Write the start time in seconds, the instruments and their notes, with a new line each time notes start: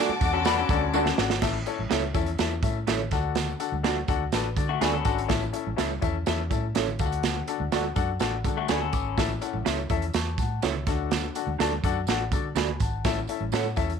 Already playing: grand piano D3, violin section F#4 A5 D6
0.09 muted fingered electric bass stroke, high conga
0.21 fingered electric bass E2, grand piano D4 F#4 A4 F#5, kick, closed hi-hat, tambourine, high conga
0.33 clean electric guitar C#4 A4
0.45 grand piano D4 F#4 A4 F#5, clean electric guitar D4 B4, snare, closed hi-hat, tambourine, muted conga
0.58 clean electric guitar C#4 A4, muted conga
0.69 fingered electric bass D2, grand piano D4 F#4 A4 D5, kick, closed hi-hat, tambourine, high conga
0.93 grand piano D4 F#4 A4 F#5 A5, clean electric guitar D4 F#4 A4 D5, tambourine, muted conga, high conga
1.06 snare, muted conga, low conga
1.18 fingered electric bass G#1, grand piano D4 F#4 A4 F#5, snare, tambourine
1.30 snare
1.42 fingered electric bass A1, grand piano A2 C#4 E4 A4 E5, kick, snare, crash, tambourine, muted conga, low conga
1.66 grand piano C#4 E4 A4 C#5, closed hi-hat, tambourine
1.79 fingered electric bass A1, high conga
1.89 fingered electric bass C#2, clean electric guitar C#4 E4 A4 C#5, grand piano C#4 E4 A4 E5, snare, closed hi-hat, tambourine
2.03 muted conga, high conga
2.14 fingered electric bass E2, grand piano C#4 E4 A4 E5, kick, closed hi-hat, tambourine, high conga, low conga
2.26 closed hi-hat
2.38 fingered electric bass E2, grand piano C#4 E4 A4 E5, snare, closed hi-hat, tambourine
2.63 fingered electric bass A2, grand piano C#4 E4 A4 E5, kick, closed hi-hat, tambourine, high conga
2.87 fingered electric bass A1, clean electric guitar C#4 E4 A4 C#5, grand piano C#4 E4 A4 E5, snare, closed hi-hat, tambourine, high conga
2.99 low conga
3.11 fingered electric bass D2, grand piano D3 D4 F#4 A4 F#5, kick, snare, closed hi-hat, tambourine
3.35 snare, closed hi-hat, tambourine, muted conga, low conga
3.48 muted conga
3.60 grand piano D4 F#4 A4 F#5, closed hi-hat, tambourine
3.72 fingered electric bass D2, high conga
3.83 grand piano D4 F#4 A4 F#5, clean electric guitar D4 F#4 A4 D5, snare, closed hi-hat, tambourine
3.97 muted conga, high conga
4.08 fingered electric bass D2, grand piano D4 F#4 A4 F#5, kick, closed hi-hat, tambourine, high conga, low conga
4.32 fingered electric bass A1, grand piano D4 F#4 A4 B4, snare, closed hi-hat, tambourine, muted conga
4.56 fingered electric bass D3, grand piano D4 F#4 A4 D5, kick, closed hi-hat, tambourine, high conga
4.69 clean electric guitar A3 F#4
4.81 fingered electric bass D2, clean electric guitar B3 D4 F#4 G#4 A4 D5, grand piano D4 F#4 A4 F#5, snare, closed hi-hat, tambourine, muted conga, high conga
4.93 clean electric guitar C#4 A4, low conga
5.05 fingered electric bass G#1, grand piano D4 F#4 A4 F#5, kick, closed hi-hat, tambourine
5.18 closed hi-hat
5.28 fingered electric bass A1, grand piano A2 C#4 E4 A4 E5, kick, snare, closed hi-hat, tambourine, low conga
5.43 muted conga
5.53 grand piano C#4 E4 A4 E5, closed hi-hat, tambourine
5.66 fingered electric bass A1, high conga
5.76 fingered electric bass C#2, grand piano C#4 E4 A4 E5, clean electric guitar C#4 E4 A4 C#5, snare, closed hi-hat, tambourine
5.90 high conga
6.01 fingered electric bass E2, grand piano C#4 E4 A4 E5, kick, closed hi-hat, tambourine, high conga, low conga
6.26 fingered electric bass E2, grand piano C#4 E4 A4 E5, snare, closed hi-hat, tambourine, muted conga
6.39 muted conga
6.50 fingered electric bass A2, grand piano C#4 E4 A4 E5, kick, closed hi-hat, tambourine, high conga
6.75 fingered electric bass A1, grand piano C#4 E4 A4 E5, clean electric guitar C#4 E4 A4 C#5, snare, closed hi-hat, tambourine, muted conga, high conga
6.87 muted conga, low conga
6.99 fingered electric bass D2, grand piano D3 D4 F#4 A4 F5, kick, closed hi-hat, tambourine
7.06 grand piano F#5
7.12 closed hi-hat
7.23 snare, closed hi-hat, tambourine, muted conga, low conga
7.36 muted conga
7.48 grand piano D4 F#4 A4 F#5, closed hi-hat, tambourine
7.60 fingered electric bass D2, high conga
7.72 fingered electric bass D2, clean electric guitar D4 F#4 A4 D5, grand piano D4 F#4 A4 F#5, snare, closed hi-hat, tambourine
7.84 high conga
7.96 fingered electric bass F#2, grand piano D4 F#4 A4 F#5, kick, closed hi-hat, tambourine, high conga
8.19 fingered electric bass A1, grand piano D4 F#4 A4 F#5, snare, closed hi-hat, tambourine
8.44 fingered electric bass D3, grand piano D4 F#4 A4 F#5, kick, closed hi-hat, tambourine, high conga
8.57 clean electric guitar A3 F#4
8.68 fingered electric bass D2, clean electric guitar B3 D4 F#4 G#4 A4 D5, grand piano F#5 A5, snare, closed hi-hat, tambourine, muted conga, high conga
8.81 clean electric guitar C#4 A4, low conga
8.93 fingered electric bass G#1, grand piano B5 D6, kick, closed hi-hat, tambourine
9.17 fingered electric bass A1, grand piano A2 C#4 E4 A4 E5, kick, snare, closed hi-hat, tambourine, muted conga, low conga
9.41 grand piano C#4 E4 A4 F#5, closed hi-hat, tambourine
9.53 fingered electric bass A1, high conga
9.65 fingered electric bass C#2, clean electric guitar C#4 E4 A4 C#5, grand piano C#4 E4 A4 E5, snare, closed hi-hat, tambourine
9.78 high conga
9.90 fingered electric bass E2, grand piano C#4 E4 A4 E5, kick, closed hi-hat, tambourine, high conga, low conga
10.02 closed hi-hat
10.14 fingered electric bass E2, grand piano A5 C#6, snare, closed hi-hat, tambourine
10.38 fingered electric bass A2, grand piano F#5 A5, kick, closed hi-hat, tambourine, high conga
10.62 fingered electric bass C#2, clean electric guitar C#4 E4 A4 C#5, grand piano C#5 E5, snare, closed hi-hat, tambourine, high conga
10.75 low conga
10.87 fingered electric bass D2, grand piano D3 D4 F#4 A4 F#5, kick, snare, closed hi-hat, tambourine
11.11 snare, closed hi-hat, tambourine, muted conga, low conga
11.35 grand piano D4 F#4 A4 F#5, closed hi-hat, tambourine
11.47 fingered electric bass D2, high conga
11.59 fingered electric bass D2, clean electric guitar D4 F#4 A4 D5, grand piano D4 F#4 A4 A5, snare, closed hi-hat, tambourine
11.72 high conga
11.84 fingered electric bass F#2, grand piano D4 F#4 A4 F#5, kick, closed hi-hat, tambourine, high conga, low conga
12.07 fingered electric bass A1, grand piano D4 F#4 A4 F#5, snare, closed hi-hat, tambourine
12.31 fingered electric bass D3, grand piano D4 F#4 A4 D5, kick, closed hi-hat, tambourine, high conga
12.55 fingered electric bass D2, clean electric guitar D4 F#4 A4 D5, grand piano G#5 B5, snare, closed hi-hat, tambourine, muted conga, high conga
12.68 low conga
12.80 fingered electric bass G#1, grand piano F#5 A5, kick, closed hi-hat, tambourine
13.05 fingered electric bass A1, grand piano A2 C#4 E4 A4 E5, kick, snare, closed hi-hat, tambourine, low conga
13.16 muted conga
13.27 grand piano C#4 E4 A4 E5, closed hi-hat, tambourine
13.41 fingered electric bass A1, high conga
13.52 fingered electric bass A2, clean electric guitar C#4 E4 A4 C#5, grand piano C#4 E4 A4 F#5, snare, closed hi-hat, tambourine, muted conga
13.64 high conga
13.76 fingered electric bass E2, grand piano C#4 E4 A4 E5, kick, closed hi-hat, tambourine, high conga, low conga
13.90 closed hi-hat